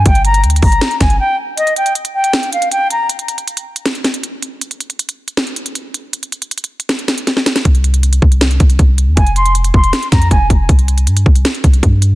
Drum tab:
HH |x--x--x--x--x-x-x-o--x--x--x--x--x--------------|x--x--x--x--x--x-----x--x--x--x--x--x-----x-----|x--x--x--x--x--x-----x--x--x--x--x--x-----x-----|x--x--x--x--x--x-----x--x--x--x--x--x-----x-----|
SD |------------------------o-----o-----------------|------------------------o-----------------------|------------------------o-----o-----------------|------------------------o-----------------------|
BD |o-----------------o-----------o-----------------|------------------------------------------------|------------------------------------------------|------------------------------------------------|

HH |x--x--x--x--x-x-x----x--x--x--x--x--x-----x--x--|x--x--x--x--x--x-----x--x--x--x--x--x-----x-----|x--x--x--x--x--x-----x--x--x--x--x--x-----x-----|x--x--x--x--x--x-----x--x--x--x--x--x-----x-----|
SD |------------------------o-----o-----o--o--o--o--|------------------------o-----------------------|------------------------o-----o-----------------|------------------------o-----------------------|
BD |------------------------------------------------|o-----------------o-----------o-----o-----------|o-----------------o-----------o-----o-----o-----|o-----------------o-----------o-----o-----------|